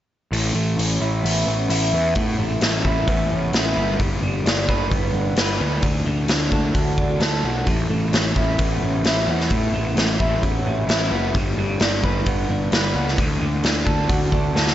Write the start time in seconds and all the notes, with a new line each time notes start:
0.32 A1 A2, open hi-hat
0.54 A1 A3
0.78 A1 C#4, open hi-hat
1.01 A1 E4
1.23 A1 B3, open hi-hat
1.46 A1 C#4
1.69 A1 E4, open hi-hat
1.92 E2 B3
2.15 A2, kick, open hi-hat
2.38 A1 A3
2.61 A1 C#4, snare, open hi-hat
2.84 A1 E4, kick
3.07 A1 B3, kick, open hi-hat
3.30 C#4
3.53 A1 E4, snare, open hi-hat
3.76 G1 B3
3.99 G1 G3, kick, open hi-hat
4.21 G1 G3
4.44 G1 D4, snare, open hi-hat
4.68 G1 B4, kick
4.91 G1 B3, kick, open hi-hat
5.13 G1 D4
5.36 G1 B4, snare, open hi-hat
5.60 D2 B3
5.82 D2 D3, kick, open hi-hat
6.06 D2 D3
6.28 D2 D4, snare, open hi-hat
6.51 D2 A4, kick
6.74 D2 F#4, kick, open hi-hat
6.98 D4, kick
7.20 D2 A4, snare, open hi-hat
7.43 B1 F#4
7.66 A1 A2, kick, open hi-hat
7.89 A1 A3
8.12 A1 C#4, snare, open hi-hat
8.36 A1 E4, kick
8.58 A1 B3, kick, open hi-hat
8.81 A1 C#4
9.04 A1 E4, snare, open hi-hat
9.27 E2 B3
9.40 snare
9.50 A2, kick, open hi-hat
9.73 A1 A3
9.96 A1 C#4, snare, open hi-hat
10.20 A1 E4, kick
10.43 A1 B3, kick, open hi-hat
10.66 C#4
10.87 A1 E4, snare, open hi-hat
11.10 F#1 B3
11.35 G1 G3, kick, open hi-hat
11.56 G1 G3
11.79 G1 D4, snare, open hi-hat
12.04 G1 B4, kick
12.26 G1 B3, kick, open hi-hat
12.49 G1 D4
12.72 G1 B4, snare, open hi-hat
12.95 C#2 B3
13.08 snare
13.18 D2 D3, kick, open hi-hat
13.41 D2 D3
13.64 D2 D4, snare, open hi-hat
13.86 D2 A4, kick
14.09 D2 F#4, kick, open hi-hat
14.32 D4, kick
14.54 D2 A4, snare
14.67 snare